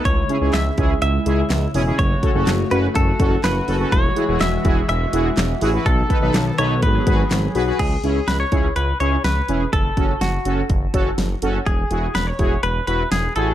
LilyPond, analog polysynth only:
\new Staff \with { instrumentName = "Analog polysynth" } { \time 4/4 \key cis \minor \tempo 4 = 124 r8 <cis' e' gis'>16 <cis' e' gis'>16 r8 <cis' e' gis'>16 r8. <cis' e' gis'>16 r8. <cis' e' gis'>16 <cis' e' gis'>16 | r8 <cis' fis' a'>16 <cis' fis' a'>16 r8 <cis' fis' b'>16 r8. <cis' fis' a'>16 r8. <cis' fis' a'>16 <cis' fis' a'>16 | r8 <e' fis' gis'>16 <e' fis' gis'>16 r8 <e' fis' gis'>16 r8. <e' fis' gis'>16 r8. <e' fis' gis'>16 <e' fis' b'>16 | r8 <dis' a' b'>16 <dis' a' b'>16 r8 <dis' a' b'>16 r8. <fis' gis' b'>16 r8. <fis' gis' b'>16 <fis' gis' b'>16 |
r8 <cis' e' gis'>16 r8. <cis' e' gis'>16 r8. <cis' e' gis'>16 r8. <cis' e' gis'>16 r16 | r8 <cis' fis' a'>16 r8. <cis' fis' a'>16 r8. <cis' fis' a'>16 r8. <cis' fis' a'>16 r16 | r8 <e' fis' gis'>16 r8. <e' fis' gis'>16 r8. <e' fis' b'>16 r8. <e' fis' gis'>16 r16 | }